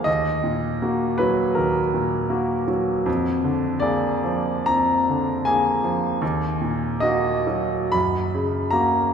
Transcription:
0.04 1.54 D#2 soft
0.04 1.19 D#5 medium
0.44 1.05 A#2 soft
0.82 1.17 A#3 soft
0.82 1.17 F#4 soft
1.18 1.80 F#3 soft
1.18 1.57 B4 medium
1.55 3.03 D#2 soft
1.55 2.67 A#4 soft
1.94 2.53 A#2 soft
2.30 2.64 A#3 soft
2.30 2.65 F#4 soft
2.67 3.06 F#3 soft
3.06 4.64 F2 medium
3.44 4.06 D3 soft
3.80 4.20 A#3 soft
3.80 4.20 G#4 soft
3.80 4.67 D5 medium
4.24 4.93 F3 soft
4.66 6.17 F2 soft
4.66 5.45 A#5 medium
5.09 5.68 D3 soft
5.45 5.80 A#3 soft
5.45 5.80 G#4 soft
5.45 6.21 G#5 medium
5.84 6.22 F3 soft
6.22 7.90 D#2 medium
6.61 7.28 A#2 soft
7.00 7.43 A#3 soft
7.00 7.44 F#4 soft
7.00 7.94 D#5 medium
7.47 7.94 F#3 soft
7.92 9.14 F#2 soft
7.92 8.73 B5 medium
8.34 8.97 C#3 soft
8.71 9.09 A#3 soft
8.71 9.09 F#4 soft
8.71 9.14 A#5 medium

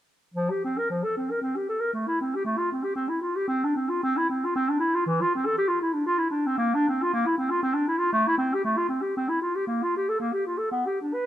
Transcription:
0.34 0.52 F3 medium
0.50 0.63 G4 soft
0.64 0.79 C4 soft
0.78 0.89 A#4 soft
0.90 1.06 F3 soft
1.04 1.16 A4 soft
1.17 1.32 C4 soft
1.31 1.41 A#4 soft
1.42 1.57 C4 soft
1.56 1.68 G4 soft
1.69 1.81 A4 soft
1.80 1.93 A#4 soft
1.93 2.09 A3 soft
2.07 2.20 E4 medium
2.21 2.37 C4 soft
2.35 2.44 G4 soft
2.45 2.59 A3 medium
2.58 2.71 F4 soft
2.72 2.85 C4 soft
2.83 2.95 G4 soft
2.96 3.10 C4 soft
3.09 3.21 E4 soft
3.21 3.37 F4 soft
3.36 3.47 G4 soft
3.48 3.66 C4 medium
3.64 3.75 D4 soft
3.76 3.91 C4 soft
3.89 4.03 F4 soft
4.03 4.19 C4 medium
4.17 4.29 E4 soft
4.30 4.46 C4 soft
4.45 4.55 F4 soft
4.56 4.71 C4 medium
4.69 4.79 D4 soft
4.80 4.96 E4 soft
4.95 5.06 F4 medium
5.06 5.23 E3 medium
5.21 5.33 F4 medium
5.35 5.47 C4 soft
5.46 5.57 A4 medium
5.58 5.70 G4 medium
5.68 5.81 F4 medium
5.81 5.95 E4 soft
5.94 6.06 D4 soft
6.06 6.20 F4 medium
6.18 6.30 E4 soft
6.31 6.48 D4 soft
6.47 6.57 C4 medium
6.58 6.76 A#3 medium
6.74 6.87 D4 medium
6.89 7.04 C4 soft
7.02 7.13 F4 medium
7.13 7.28 A#3 medium
7.26 7.37 E4 medium
7.38 7.52 C4 soft
7.50 7.62 F4 medium
7.63 7.75 C4 medium
7.74 7.87 D4 soft
7.88 8.00 E4 soft
7.98 8.12 F4 medium
8.13 8.29 A3 medium
8.28 8.37 E4 medium
8.38 8.55 C4 medium
8.54 8.64 G4 medium
8.65 8.79 A3 medium
8.77 8.88 F4 medium
8.89 9.03 C4 soft
9.02 9.15 G4 soft
9.17 9.30 C4 medium
9.29 9.41 E4 soft
9.42 9.57 F4 soft
9.55 9.66 G4 soft
9.67 9.85 A#3 medium
9.83 9.96 F4 medium
9.97 10.11 G4 soft
10.09 10.19 A4 soft
10.20 10.34 A#3 medium
10.33 10.46 G4 soft
10.46 10.59 F4 soft
10.58 10.71 A4 soft
10.71 10.88 B3 medium
10.86 11.00 G4 soft
11.01 11.15 D4 soft
11.14 11.26 B4 soft

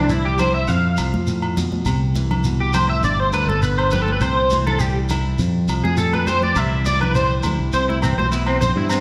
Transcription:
0.00 0.65 C2 loud
0.00 0.66 E3 medium
0.00 0.10 G3 medium
0.00 0.67 C4 medium
0.00 0.39 E4 medium
0.09 3.61 G3 medium
0.09 0.25 E4 medium
0.09 shekere medium
0.25 0.39 G4 medium
0.38 0.70 E4 medium
0.38 0.54 C5 medium
0.38 low conga medium
0.38 low agogo medium
0.38 shekere medium
0.54 0.68 E5 medium
0.68 0.97 F2 loud
0.68 1.84 F2 medium
0.68 1.57 F5 medium
0.68 shekere medium
0.97 1.13 C2 medium
0.97 1.83 F3 medium
0.97 low agogo medium
0.97 shekere medium
1.14 1.83 F2 medium
1.14 high conga medium
1.27 1.57 A2 medium
1.27 shekere medium
1.42 low agogo medium
1.57 1.87 B2 medium
1.57 high conga medium
1.57 low conga medium
1.57 shekere medium
1.72 high conga medium
1.85 3.00 C2 loud
1.85 2.17 C3 medium
1.85 low agogo medium
1.85 shekere medium
2.15 3.01 E3 medium
2.15 high conga medium
2.15 shekere medium
2.31 low conga medium
2.31 low agogo medium
2.44 2.74 B2 medium
2.44 shekere medium
2.60 2.74 G4 medium
2.73 3.04 A2 medium
2.73 2.89 C5 loud
2.73 low conga medium
2.73 low agogo medium
2.73 shekere medium
2.90 3.04 E5 loud
3.03 3.31 G1 loud
3.03 4.18 G2 medium
3.03 3.19 D5 medium
3.03 shekere medium
3.19 3.33 C5 medium
3.33 3.47 D2 medium
3.33 4.22 D3 medium
3.33 3.48 B4 loud
3.33 low agogo medium
3.33 shekere medium
3.47 4.17 G1 medium
3.47 3.62 A4 medium
3.47 high conga medium
3.62 4.19 B3 medium
3.62 3.79 B4 loud
3.62 shekere medium
3.79 3.92 C5 medium
3.79 low agogo medium
3.91 5.11 G4 medium
3.91 4.02 B4 loud
3.91 high conga medium
3.91 low conga medium
3.91 shekere medium
4.02 4.12 A4 medium
4.08 high conga medium
4.12 4.21 B4 medium
4.20 5.35 C2 loud
4.20 4.51 C3 medium
4.20 4.63 C5 loud
4.20 low agogo medium
4.20 shekere medium
4.50 5.37 E3 medium
4.50 high conga medium
4.50 shekere medium
4.66 4.81 A4 medium
4.66 low conga medium
4.66 low agogo medium
4.79 5.98 G3 medium
4.79 4.98 G4 medium
4.79 shekere loud
5.09 5.40 E4 medium
5.09 low conga medium
5.09 low agogo medium
5.09 shekere medium
5.39 5.67 F2 loud
5.39 6.54 F2 medium
5.39 shekere loud
5.68 5.83 C2 medium
5.68 6.54 F3 medium
5.68 low agogo medium
5.68 shekere medium
5.83 6.52 F2 medium
5.83 5.97 G#4 medium
5.83 high conga medium
5.97 6.57 G3 medium
5.97 6.13 A4 medium
5.97 shekere loud
6.13 6.27 B4 medium
6.13 high conga medium
6.13 low agogo medium
6.27 6.54 G4 medium
6.27 6.42 C5 loud
6.27 high conga medium
6.27 low conga medium
6.27 shekere medium
6.43 6.57 D5 loud
6.43 high conga medium
6.56 7.40 C2 loud
6.56 6.86 C3 medium
6.56 6.85 E3 medium
6.56 7.15 G3 medium
6.56 6.85 E5 loud
6.56 low agogo medium
6.56 shekere medium
6.60 7.72 C4 medium
6.60 7.44 E4 medium
6.85 7.71 E3 medium
6.85 7.01 D5 loud
6.85 high conga medium
6.85 shekere medium
7.01 7.15 B4 medium
7.01 low conga medium
7.01 low agogo medium
7.15 8.34 G3 medium
7.15 7.33 C5 loud
7.15 shekere medium
7.43 7.58 D2 medium
7.43 9.00 E4 medium
7.43 low conga medium
7.43 low agogo medium
7.43 shekere medium
7.59 7.72 C2 medium
7.73 8.16 C2 loud
7.73 8.04 C3 medium
7.73 7.83 C5 medium
7.73 shekere medium
7.89 7.98 E4 medium
7.89 high conga medium
8.02 9.00 E3 medium
8.02 8.13 C4 medium
8.02 low agogo medium
8.02 shekere loud
8.18 8.73 B1 medium
8.18 8.27 C5 medium
8.18 high conga medium
8.32 8.92 B3 medium
8.32 8.42 E4 medium
8.32 shekere medium
8.46 8.56 C4 medium
8.46 low agogo medium
8.61 9.00 C4 medium
8.61 8.71 C5 loud
8.61 low conga medium
8.61 shekere loud
8.76 9.00 G2 loud
8.76 8.86 E4 medium
8.90 9.00 B3 medium
8.90 9.00 C4 medium
8.90 low agogo medium
8.90 shekere medium

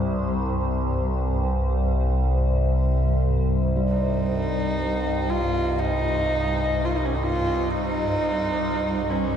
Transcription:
0.00 9.37 C2 medium
0.00 2.24 G2 medium
0.00 9.37 G2 medium
0.00 9.37 G3 medium
0.00 9.37 C5 medium
3.76 9.37 G3 medium
3.89 5.32 D#4 loud
5.30 5.81 F4 loud
5.79 6.87 D#4 loud
6.85 6.98 F4 medium
6.96 7.07 D#4 medium
7.05 7.17 C#4 medium
7.15 7.24 D#4 medium
7.23 7.72 F4 loud
7.71 9.12 D#4 loud
9.10 9.37 C#4 medium

